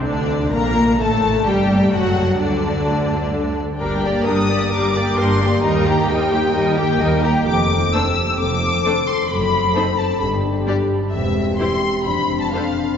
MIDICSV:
0, 0, Header, 1, 7, 480
1, 0, Start_track
1, 0, Tempo, 471328
1, 41, Time_signature, 4, 2, 24, 8
1, 3400, Tempo, 458015
1, 11560, Tempo, 472441
1, 13439, End_track
2, 0, Start_track
2, 0, Title_t, "Violin section"
2, 0, Program_c, 0, 48
2, 49, Note_on_c, 0, 74, 57
2, 500, Note_off_c, 0, 74, 0
2, 521, Note_on_c, 0, 82, 73
2, 999, Note_off_c, 0, 82, 0
2, 1023, Note_on_c, 0, 81, 69
2, 1485, Note_off_c, 0, 81, 0
2, 1490, Note_on_c, 0, 79, 61
2, 1963, Note_off_c, 0, 79, 0
2, 1970, Note_on_c, 0, 78, 73
2, 2449, Note_off_c, 0, 78, 0
2, 2464, Note_on_c, 0, 74, 58
2, 3629, Note_off_c, 0, 74, 0
2, 3884, Note_on_c, 0, 79, 60
2, 4335, Note_off_c, 0, 79, 0
2, 4366, Note_on_c, 0, 87, 79
2, 4846, Note_off_c, 0, 87, 0
2, 4851, Note_on_c, 0, 86, 75
2, 5335, Note_on_c, 0, 84, 74
2, 5340, Note_off_c, 0, 86, 0
2, 5805, Note_on_c, 0, 82, 74
2, 5809, Note_off_c, 0, 84, 0
2, 6285, Note_off_c, 0, 82, 0
2, 6294, Note_on_c, 0, 79, 76
2, 6991, Note_off_c, 0, 79, 0
2, 7003, Note_on_c, 0, 79, 66
2, 7481, Note_off_c, 0, 79, 0
2, 7491, Note_on_c, 0, 82, 70
2, 7575, Note_off_c, 0, 82, 0
2, 7733, Note_on_c, 0, 86, 84
2, 8203, Note_on_c, 0, 88, 77
2, 8206, Note_off_c, 0, 86, 0
2, 8689, Note_on_c, 0, 86, 91
2, 8697, Note_off_c, 0, 88, 0
2, 9400, Note_on_c, 0, 84, 75
2, 9402, Note_off_c, 0, 86, 0
2, 9624, Note_on_c, 0, 83, 77
2, 9649, Note_off_c, 0, 84, 0
2, 10348, Note_off_c, 0, 83, 0
2, 10351, Note_on_c, 0, 81, 64
2, 10587, Note_on_c, 0, 83, 75
2, 10596, Note_off_c, 0, 81, 0
2, 10671, Note_off_c, 0, 83, 0
2, 11555, Note_on_c, 0, 76, 64
2, 11995, Note_off_c, 0, 76, 0
2, 12025, Note_on_c, 0, 84, 68
2, 12490, Note_off_c, 0, 84, 0
2, 12499, Note_on_c, 0, 83, 78
2, 12857, Note_off_c, 0, 83, 0
2, 12870, Note_on_c, 0, 81, 60
2, 12988, Note_off_c, 0, 81, 0
2, 12993, Note_on_c, 0, 77, 61
2, 13439, Note_off_c, 0, 77, 0
2, 13439, End_track
3, 0, Start_track
3, 0, Title_t, "Violin section"
3, 0, Program_c, 1, 48
3, 30, Note_on_c, 1, 62, 50
3, 490, Note_off_c, 1, 62, 0
3, 518, Note_on_c, 1, 70, 57
3, 992, Note_on_c, 1, 69, 59
3, 998, Note_off_c, 1, 70, 0
3, 1466, Note_on_c, 1, 67, 56
3, 1469, Note_off_c, 1, 69, 0
3, 1942, Note_off_c, 1, 67, 0
3, 1954, Note_on_c, 1, 66, 55
3, 2431, Note_off_c, 1, 66, 0
3, 2431, Note_on_c, 1, 62, 47
3, 3612, Note_off_c, 1, 62, 0
3, 3879, Note_on_c, 1, 70, 43
3, 3884, Note_off_c, 1, 70, 0
3, 3884, Note_on_c, 1, 70, 42
3, 4104, Note_on_c, 1, 67, 42
3, 4109, Note_off_c, 1, 70, 0
3, 4115, Note_on_c, 1, 74, 45
3, 4344, Note_on_c, 1, 70, 39
3, 4345, Note_off_c, 1, 70, 0
3, 4345, Note_on_c, 1, 70, 39
3, 4358, Note_off_c, 1, 67, 0
3, 4363, Note_off_c, 1, 74, 0
3, 4587, Note_on_c, 1, 74, 49
3, 4594, Note_on_c, 1, 67, 48
3, 4600, Note_off_c, 1, 70, 0
3, 4837, Note_on_c, 1, 70, 49
3, 4838, Note_off_c, 1, 70, 0
3, 4838, Note_on_c, 1, 70, 49
3, 4844, Note_off_c, 1, 74, 0
3, 4848, Note_off_c, 1, 67, 0
3, 5074, Note_off_c, 1, 70, 0
3, 5087, Note_on_c, 1, 74, 41
3, 5093, Note_on_c, 1, 67, 41
3, 5326, Note_on_c, 1, 70, 45
3, 5328, Note_off_c, 1, 70, 0
3, 5328, Note_on_c, 1, 70, 46
3, 5335, Note_off_c, 1, 74, 0
3, 5339, Note_off_c, 1, 67, 0
3, 5573, Note_on_c, 1, 74, 46
3, 5574, Note_off_c, 1, 70, 0
3, 5580, Note_on_c, 1, 67, 42
3, 5817, Note_on_c, 1, 70, 52
3, 5817, Note_on_c, 1, 75, 46
3, 5818, Note_off_c, 1, 74, 0
3, 5822, Note_off_c, 1, 67, 0
3, 6044, Note_off_c, 1, 70, 0
3, 6044, Note_off_c, 1, 75, 0
3, 6055, Note_on_c, 1, 67, 48
3, 6056, Note_on_c, 1, 79, 43
3, 6295, Note_on_c, 1, 75, 44
3, 6298, Note_on_c, 1, 70, 45
3, 6299, Note_off_c, 1, 67, 0
3, 6299, Note_off_c, 1, 79, 0
3, 6533, Note_on_c, 1, 79, 53
3, 6536, Note_on_c, 1, 67, 53
3, 6538, Note_off_c, 1, 75, 0
3, 6539, Note_off_c, 1, 70, 0
3, 6747, Note_on_c, 1, 75, 46
3, 6755, Note_on_c, 1, 70, 48
3, 6774, Note_off_c, 1, 79, 0
3, 6776, Note_off_c, 1, 67, 0
3, 6983, Note_off_c, 1, 75, 0
3, 6987, Note_off_c, 1, 70, 0
3, 6995, Note_on_c, 1, 67, 45
3, 6995, Note_on_c, 1, 79, 47
3, 7243, Note_on_c, 1, 70, 52
3, 7244, Note_on_c, 1, 75, 44
3, 7245, Note_off_c, 1, 67, 0
3, 7246, Note_off_c, 1, 79, 0
3, 7490, Note_off_c, 1, 70, 0
3, 7490, Note_on_c, 1, 67, 46
3, 7491, Note_off_c, 1, 75, 0
3, 7492, Note_on_c, 1, 79, 47
3, 7733, Note_off_c, 1, 67, 0
3, 7734, Note_off_c, 1, 79, 0
3, 8213, Note_on_c, 1, 69, 48
3, 8223, Note_on_c, 1, 72, 45
3, 8297, Note_off_c, 1, 69, 0
3, 8307, Note_off_c, 1, 72, 0
3, 9185, Note_on_c, 1, 69, 47
3, 9185, Note_on_c, 1, 72, 44
3, 9269, Note_off_c, 1, 69, 0
3, 9269, Note_off_c, 1, 72, 0
3, 10127, Note_on_c, 1, 69, 39
3, 10132, Note_on_c, 1, 72, 42
3, 10210, Note_off_c, 1, 69, 0
3, 10216, Note_off_c, 1, 72, 0
3, 11081, Note_on_c, 1, 67, 48
3, 11085, Note_on_c, 1, 74, 50
3, 11164, Note_off_c, 1, 67, 0
3, 11169, Note_off_c, 1, 74, 0
3, 12042, Note_on_c, 1, 72, 38
3, 12046, Note_on_c, 1, 67, 36
3, 12124, Note_off_c, 1, 72, 0
3, 12128, Note_off_c, 1, 67, 0
3, 13004, Note_on_c, 1, 69, 42
3, 13004, Note_on_c, 1, 72, 43
3, 13085, Note_off_c, 1, 69, 0
3, 13085, Note_off_c, 1, 72, 0
3, 13439, End_track
4, 0, Start_track
4, 0, Title_t, "French horn section"
4, 0, Program_c, 2, 60
4, 29, Note_on_c, 2, 50, 53
4, 489, Note_off_c, 2, 50, 0
4, 516, Note_on_c, 2, 58, 61
4, 997, Note_off_c, 2, 58, 0
4, 997, Note_on_c, 2, 57, 58
4, 1471, Note_off_c, 2, 57, 0
4, 1483, Note_on_c, 2, 55, 59
4, 1948, Note_on_c, 2, 54, 66
4, 1960, Note_off_c, 2, 55, 0
4, 2428, Note_off_c, 2, 54, 0
4, 2436, Note_on_c, 2, 50, 58
4, 3614, Note_off_c, 2, 50, 0
4, 3859, Note_on_c, 2, 67, 47
4, 3863, Note_on_c, 2, 58, 52
4, 7682, Note_off_c, 2, 67, 0
4, 7684, Note_off_c, 2, 58, 0
4, 7728, Note_on_c, 2, 60, 55
4, 7732, Note_on_c, 2, 69, 57
4, 8657, Note_off_c, 2, 60, 0
4, 8659, Note_off_c, 2, 69, 0
4, 8691, Note_on_c, 2, 60, 56
4, 8693, Note_on_c, 2, 69, 53
4, 9635, Note_off_c, 2, 60, 0
4, 9636, Note_off_c, 2, 69, 0
4, 9647, Note_on_c, 2, 69, 59
4, 9653, Note_on_c, 2, 60, 56
4, 10578, Note_off_c, 2, 69, 0
4, 10581, Note_off_c, 2, 60, 0
4, 10592, Note_on_c, 2, 62, 53
4, 10602, Note_on_c, 2, 67, 56
4, 11389, Note_off_c, 2, 62, 0
4, 11389, Note_off_c, 2, 67, 0
4, 11567, Note_on_c, 2, 60, 50
4, 11568, Note_on_c, 2, 67, 50
4, 12001, Note_off_c, 2, 60, 0
4, 12002, Note_off_c, 2, 67, 0
4, 12020, Note_on_c, 2, 67, 50
4, 12024, Note_on_c, 2, 60, 49
4, 12487, Note_off_c, 2, 67, 0
4, 12489, Note_off_c, 2, 60, 0
4, 12500, Note_on_c, 2, 62, 47
4, 12508, Note_on_c, 2, 60, 47
4, 12972, Note_off_c, 2, 60, 0
4, 12977, Note_off_c, 2, 62, 0
4, 12985, Note_on_c, 2, 60, 50
4, 12989, Note_on_c, 2, 62, 52
4, 13439, Note_off_c, 2, 60, 0
4, 13439, Note_off_c, 2, 62, 0
4, 13439, End_track
5, 0, Start_track
5, 0, Title_t, "Viola section"
5, 0, Program_c, 3, 48
5, 41, Note_on_c, 3, 50, 54
5, 495, Note_off_c, 3, 50, 0
5, 527, Note_on_c, 3, 58, 52
5, 1002, Note_off_c, 3, 58, 0
5, 1014, Note_on_c, 3, 57, 62
5, 1480, Note_off_c, 3, 57, 0
5, 1492, Note_on_c, 3, 55, 52
5, 1964, Note_off_c, 3, 55, 0
5, 1969, Note_on_c, 3, 54, 57
5, 2448, Note_off_c, 3, 54, 0
5, 2453, Note_on_c, 3, 50, 57
5, 3623, Note_off_c, 3, 50, 0
5, 3890, Note_on_c, 3, 62, 44
5, 3891, Note_on_c, 3, 55, 41
5, 4113, Note_off_c, 3, 55, 0
5, 4113, Note_off_c, 3, 62, 0
5, 4138, Note_on_c, 3, 58, 43
5, 4139, Note_off_c, 3, 58, 0
5, 4139, Note_on_c, 3, 58, 42
5, 4375, Note_off_c, 3, 58, 0
5, 4375, Note_on_c, 3, 55, 46
5, 4376, Note_on_c, 3, 62, 42
5, 4615, Note_off_c, 3, 55, 0
5, 4615, Note_off_c, 3, 62, 0
5, 4617, Note_on_c, 3, 58, 39
5, 4620, Note_off_c, 3, 58, 0
5, 4620, Note_on_c, 3, 58, 42
5, 4852, Note_on_c, 3, 55, 46
5, 4853, Note_on_c, 3, 62, 44
5, 4861, Note_off_c, 3, 58, 0
5, 5082, Note_off_c, 3, 55, 0
5, 5082, Note_off_c, 3, 62, 0
5, 5095, Note_on_c, 3, 58, 48
5, 5101, Note_off_c, 3, 58, 0
5, 5101, Note_on_c, 3, 58, 50
5, 5333, Note_on_c, 3, 55, 47
5, 5333, Note_on_c, 3, 62, 46
5, 5342, Note_off_c, 3, 58, 0
5, 5566, Note_on_c, 3, 58, 46
5, 5567, Note_off_c, 3, 58, 0
5, 5567, Note_on_c, 3, 58, 47
5, 5577, Note_off_c, 3, 55, 0
5, 5577, Note_off_c, 3, 62, 0
5, 5811, Note_on_c, 3, 55, 50
5, 5814, Note_on_c, 3, 63, 47
5, 5815, Note_off_c, 3, 58, 0
5, 6040, Note_off_c, 3, 55, 0
5, 6042, Note_off_c, 3, 63, 0
5, 6050, Note_on_c, 3, 58, 47
5, 6053, Note_on_c, 3, 67, 44
5, 6291, Note_on_c, 3, 63, 45
5, 6292, Note_on_c, 3, 55, 45
5, 6296, Note_off_c, 3, 58, 0
5, 6298, Note_off_c, 3, 67, 0
5, 6530, Note_on_c, 3, 67, 43
5, 6534, Note_on_c, 3, 58, 41
5, 6536, Note_off_c, 3, 55, 0
5, 6536, Note_off_c, 3, 63, 0
5, 6770, Note_on_c, 3, 55, 49
5, 6770, Note_on_c, 3, 63, 49
5, 6773, Note_off_c, 3, 67, 0
5, 6775, Note_off_c, 3, 58, 0
5, 6995, Note_off_c, 3, 55, 0
5, 6995, Note_off_c, 3, 63, 0
5, 7000, Note_on_c, 3, 58, 51
5, 7004, Note_on_c, 3, 67, 50
5, 7239, Note_on_c, 3, 55, 47
5, 7245, Note_on_c, 3, 63, 46
5, 7248, Note_off_c, 3, 58, 0
5, 7250, Note_off_c, 3, 67, 0
5, 7483, Note_on_c, 3, 58, 47
5, 7483, Note_on_c, 3, 67, 46
5, 7488, Note_off_c, 3, 55, 0
5, 7491, Note_off_c, 3, 63, 0
5, 7730, Note_off_c, 3, 58, 0
5, 7730, Note_off_c, 3, 67, 0
5, 8209, Note_on_c, 3, 57, 48
5, 8212, Note_on_c, 3, 62, 47
5, 8293, Note_off_c, 3, 57, 0
5, 8296, Note_off_c, 3, 62, 0
5, 9176, Note_on_c, 3, 62, 44
5, 9179, Note_on_c, 3, 57, 42
5, 9260, Note_off_c, 3, 62, 0
5, 9263, Note_off_c, 3, 57, 0
5, 10125, Note_on_c, 3, 60, 46
5, 10126, Note_on_c, 3, 63, 45
5, 10209, Note_off_c, 3, 60, 0
5, 10210, Note_off_c, 3, 63, 0
5, 11077, Note_on_c, 3, 62, 40
5, 11081, Note_on_c, 3, 55, 45
5, 11161, Note_off_c, 3, 62, 0
5, 11165, Note_off_c, 3, 55, 0
5, 12031, Note_on_c, 3, 64, 42
5, 12033, Note_on_c, 3, 55, 41
5, 12113, Note_off_c, 3, 64, 0
5, 12114, Note_off_c, 3, 55, 0
5, 12995, Note_on_c, 3, 62, 39
5, 12998, Note_on_c, 3, 50, 36
5, 13076, Note_off_c, 3, 62, 0
5, 13079, Note_off_c, 3, 50, 0
5, 13439, End_track
6, 0, Start_track
6, 0, Title_t, "Cello section"
6, 0, Program_c, 4, 48
6, 40, Note_on_c, 4, 38, 58
6, 495, Note_off_c, 4, 38, 0
6, 530, Note_on_c, 4, 46, 58
6, 1007, Note_on_c, 4, 45, 51
6, 1014, Note_off_c, 4, 46, 0
6, 1486, Note_off_c, 4, 45, 0
6, 1488, Note_on_c, 4, 43, 64
6, 1953, Note_off_c, 4, 43, 0
6, 1964, Note_on_c, 4, 42, 57
6, 2436, Note_off_c, 4, 42, 0
6, 2445, Note_on_c, 4, 38, 47
6, 3619, Note_off_c, 4, 38, 0
6, 3888, Note_on_c, 4, 43, 58
6, 4313, Note_off_c, 4, 43, 0
6, 4370, Note_on_c, 4, 43, 54
6, 4799, Note_off_c, 4, 43, 0
6, 4857, Note_on_c, 4, 43, 55
6, 5286, Note_off_c, 4, 43, 0
6, 5341, Note_on_c, 4, 43, 65
6, 5765, Note_off_c, 4, 43, 0
6, 5821, Note_on_c, 4, 39, 61
6, 6246, Note_off_c, 4, 39, 0
6, 6309, Note_on_c, 4, 39, 53
6, 6726, Note_off_c, 4, 39, 0
6, 6778, Note_on_c, 4, 39, 50
6, 7199, Note_off_c, 4, 39, 0
6, 7251, Note_on_c, 4, 39, 63
6, 7678, Note_off_c, 4, 39, 0
6, 7727, Note_on_c, 4, 41, 64
6, 8132, Note_off_c, 4, 41, 0
6, 8693, Note_on_c, 4, 41, 57
6, 9098, Note_off_c, 4, 41, 0
6, 9653, Note_on_c, 4, 42, 67
6, 10047, Note_off_c, 4, 42, 0
6, 10608, Note_on_c, 4, 43, 60
6, 11006, Note_off_c, 4, 43, 0
6, 11571, Note_on_c, 4, 40, 63
6, 11958, Note_off_c, 4, 40, 0
6, 12505, Note_on_c, 4, 41, 46
6, 12908, Note_off_c, 4, 41, 0
6, 13439, End_track
7, 0, Start_track
7, 0, Title_t, "Double bass section"
7, 0, Program_c, 5, 48
7, 49, Note_on_c, 5, 38, 51
7, 500, Note_off_c, 5, 38, 0
7, 533, Note_on_c, 5, 34, 57
7, 1015, Note_off_c, 5, 34, 0
7, 1016, Note_on_c, 5, 33, 61
7, 1491, Note_off_c, 5, 33, 0
7, 1497, Note_on_c, 5, 31, 58
7, 1957, Note_off_c, 5, 31, 0
7, 1960, Note_on_c, 5, 30, 55
7, 2434, Note_off_c, 5, 30, 0
7, 2452, Note_on_c, 5, 38, 50
7, 3623, Note_off_c, 5, 38, 0
7, 3881, Note_on_c, 5, 31, 58
7, 4309, Note_off_c, 5, 31, 0
7, 4365, Note_on_c, 5, 31, 53
7, 4796, Note_off_c, 5, 31, 0
7, 4858, Note_on_c, 5, 31, 57
7, 5287, Note_off_c, 5, 31, 0
7, 5339, Note_on_c, 5, 31, 56
7, 5764, Note_off_c, 5, 31, 0
7, 5808, Note_on_c, 5, 39, 64
7, 6240, Note_off_c, 5, 39, 0
7, 6295, Note_on_c, 5, 39, 62
7, 6719, Note_off_c, 5, 39, 0
7, 6770, Note_on_c, 5, 39, 63
7, 7195, Note_off_c, 5, 39, 0
7, 7250, Note_on_c, 5, 39, 58
7, 7677, Note_off_c, 5, 39, 0
7, 7736, Note_on_c, 5, 29, 63
7, 8136, Note_off_c, 5, 29, 0
7, 8695, Note_on_c, 5, 29, 56
7, 9099, Note_off_c, 5, 29, 0
7, 9665, Note_on_c, 5, 30, 60
7, 10053, Note_off_c, 5, 30, 0
7, 10604, Note_on_c, 5, 31, 59
7, 11004, Note_off_c, 5, 31, 0
7, 11567, Note_on_c, 5, 28, 61
7, 11956, Note_off_c, 5, 28, 0
7, 12501, Note_on_c, 5, 29, 50
7, 12906, Note_off_c, 5, 29, 0
7, 13439, End_track
0, 0, End_of_file